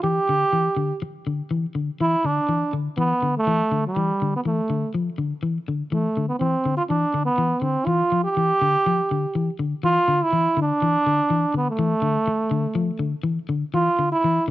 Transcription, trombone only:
0.03 0.98 G4 loud
2.01 2.27 E4 loud
2.26 2.74 D4 medium
2.98 3.34 B3 loud
3.37 3.83 A3 loud
3.87 4.32 G3 medium
4.36 4.41 B3 medium
4.47 4.92 A3 medium
5.92 6.28 A3 medium
6.29 6.38 B3 medium
6.39 6.75 C4 medium
6.77 6.83 F4 medium
6.89 7.25 D4 medium
7.25 7.64 B3 loud
7.62 7.87 C4 medium
7.86 8.24 F4 loud
8.24 9.54 G4 loud
9.85 10.25 F4 loud
10.23 10.58 E4 loud
10.62 11.53 D4 loud
11.57 11.68 B3 medium
11.70 13.12 A3 loud
13.74 14.10 F4 loud
14.12 14.45 E4 loud

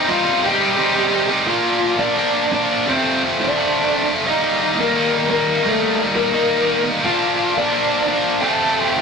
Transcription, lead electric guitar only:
0.00 0.10 D#5 medium
0.09 0.41 F4 medium
0.09 0.45 F5 medium
0.44 1.26 G4 medium
0.44 1.27 G5 loud
1.47 1.96 F4 medium
1.47 1.99 F5 medium
1.99 2.48 D4 medium
1.99 2.48 D5 medium
2.53 2.84 D4 medium
2.53 2.89 D5 medium
2.89 3.20 C4 medium
2.89 3.20 C5 medium
3.41 4.05 D4 medium
3.41 4.05 D5 medium
4.27 4.75 D#4 medium
4.27 4.75 D#5 medium
4.79 5.27 A#3 medium
4.79 5.29 A#4 medium
5.29 5.62 A#3 medium
5.29 5.66 A#4 medium
5.66 5.98 A3 medium
5.66 5.98 A4 medium
6.16 6.82 A#3 medium
6.16 6.82 A#4 loud
7.05 7.53 F4 medium
7.05 7.58 F5 medium
7.58 8.06 D4 medium
7.58 8.06 D5 loud
8.08 8.41 D4 medium
8.08 8.43 D5 medium
8.41 8.91 A4 medium
8.41 8.84 A5 medium
8.84 8.96 G5 medium
8.97 9.02 F4 medium
8.97 9.02 F5 loud

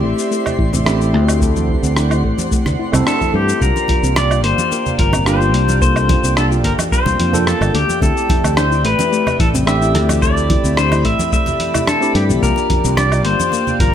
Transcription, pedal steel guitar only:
3.08 3.33 A4 medium
3.36 3.63 G4 medium
3.62 4.19 A#4 medium
4.17 4.42 D5 medium
4.44 4.95 C5 medium
5.00 5.25 A#4 medium
5.28 5.81 C5 medium
5.82 6.33 C5 loud
6.37 6.45 A4 medium
6.65 6.72 A#4 medium
6.92 7.47 C5 loud
7.47 7.75 A4 medium
7.75 8.00 G4 medium
8.03 8.59 A4 loud
8.58 8.85 C5 medium
8.86 9.36 B4 loud
9.40 9.48 A4 loud
9.68 10.22 E5 loud
10.22 10.79 D5 loud
10.78 11.06 C5 loud
11.05 11.31 E5 loud
11.33 11.84 E5 loud
11.88 12.13 A4 medium
12.16 12.23 G4 medium
12.43 12.94 A#4 loud
12.97 13.24 D5 medium
13.25 13.81 C5 medium
13.80 13.95 A#4 medium

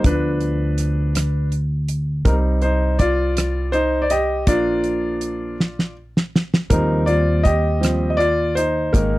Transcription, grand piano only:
0.05 1.11 F3 soft
0.05 1.12 B3 soft
0.05 1.49 D4 medium
0.05 1.49 B4 medium
2.25 4.44 G3 soft
2.25 4.44 C4 soft
2.25 2.63 D#4 soft
2.25 2.33 A#4 medium
2.62 2.98 D#4 medium
2.62 2.97 C5 medium
2.99 3.71 F4 medium
2.99 3.76 D5 medium
3.72 4.02 D#4 medium
3.72 4.04 C5 medium
4.02 4.10 D5 medium
4.11 4.46 G4 medium
4.11 4.49 D#5 medium
4.47 5.55 F3 soft
4.47 5.55 A#3 soft
4.47 5.55 D4 soft
4.47 5.93 F4 medium
4.47 5.92 D5 medium
6.70 7.79 F3 soft
6.70 7.79 G3 soft
6.70 7.79 C4 soft
6.70 7.06 D#4 medium
6.70 7.05 A#4 medium
7.06 7.43 F4 medium
7.06 7.46 D5 medium
7.43 8.09 G4 medium
7.43 8.08 D#5 medium
7.81 8.15 F3 soft
7.81 8.15 G3 soft
7.81 8.15 C4 soft
8.10 8.19 D#5 medium
8.17 8.54 F4 medium
8.17 8.53 D5 medium
8.55 8.92 D#4 medium
8.55 8.94 C5 medium
8.93 9.19 D#3 soft
8.93 9.19 G#3 soft
8.93 9.19 A#3 medium
8.93 9.19 D#4 medium
8.93 9.19 A#4 medium

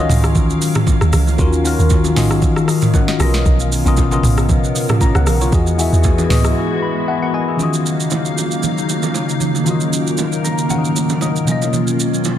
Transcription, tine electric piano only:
0.00 1.37 D#3 medium
0.00 1.38 C#4 medium
0.00 1.39 F4 medium
0.00 1.40 F#4 medium
0.00 2.19 D#5 loud
1.37 1.59 D#3 medium
1.37 1.60 C#4 medium
1.37 1.60 F4 medium
1.37 1.61 F#4 medium
1.37 1.61 A#4 loud
1.63 2.06 D#3 medium
1.63 2.07 C#4 medium
1.63 2.07 F4 medium
1.63 2.08 F#4 medium
1.63 2.08 A#4 medium
2.15 2.99 D#3 medium
2.15 2.99 C#4 medium
2.15 2.68 F4 medium
2.15 2.68 F#4 medium
2.15 2.67 D#5 loud
2.68 2.93 F#4 medium
2.68 2.93 D#5 medium
2.94 3.08 A#4 medium
2.94 3.08 F#5 medium
3.09 3.33 F#4 medium
3.09 3.21 D#5 medium
3.18 3.71 B2 loud
3.18 3.71 B3 medium
3.18 3.72 C#4 medium
3.18 3.72 F4 medium
3.18 3.72 A#4 medium
3.18 3.73 D#5 loud
3.84 4.05 B2 medium
3.84 4.06 B3 medium
3.84 4.06 C#4 medium
3.84 4.06 F4 medium
3.84 4.07 A#4 medium
3.84 4.07 D#5 loud
4.10 4.93 C#3 medium
4.10 4.94 B3 medium
4.10 4.94 C#4 medium
4.10 4.94 F4 medium
4.10 4.95 A#4 medium
4.10 4.95 D#5 loud
5.01 5.15 C#5 medium
5.01 5.15 A#5 medium
5.16 5.40 A#4 medium
5.16 5.40 F#5 medium
5.41 5.66 F4 medium
5.41 5.66 C#5 medium
5.51 5.73 E3 medium
5.51 5.74 B3 medium
5.51 5.74 F#4 medium
5.51 5.74 G#4 medium
5.51 5.75 D#5 loud
5.77 6.20 E3 medium
5.77 6.21 B3 medium
5.77 6.21 F#4 medium
5.77 6.22 G#4 medium
5.77 6.22 E5 loud
6.29 7.13 E3 medium
6.29 7.13 B3 medium
6.29 7.14 F#4 medium
6.29 7.08 G#4 medium
6.29 7.09 D#5 loud
6.82 7.06 B5 medium
7.08 7.22 G#4 medium
7.08 7.22 E5 medium
7.08 7.21 F#5 medium
7.22 7.34 A#4 medium
7.22 7.33 F#5 medium
7.34 7.48 B4 medium
7.34 7.58 D#5 medium
7.34 7.47 G#5 medium
7.48 7.73 G#4 medium
7.48 7.73 E5 medium
7.56 9.61 D#3 medium
7.56 9.62 C#4 medium
7.56 9.63 F4 medium
7.62 9.64 F#4 medium
7.62 9.64 D#5 medium
9.63 10.66 D#3 medium
9.63 10.67 C#4 medium
9.63 10.68 F4 medium
9.69 10.69 F#4 medium
9.69 10.70 D#5 medium
10.44 10.68 A#5 medium
10.69 11.47 D#3 medium
10.69 11.47 C#4 medium
10.69 11.48 F#4 medium
10.69 10.78 C#5 soft
10.69 11.48 F5 soft
10.69 11.18 F#5 medium
10.78 11.21 D#5 medium
11.22 11.50 D#5 medium
11.44 12.38 B2 medium
11.44 12.38 F#3 medium
11.44 12.38 A#3 medium
11.49 12.38 C#4 medium
11.49 12.38 F4 medium
11.49 12.38 D#5 medium

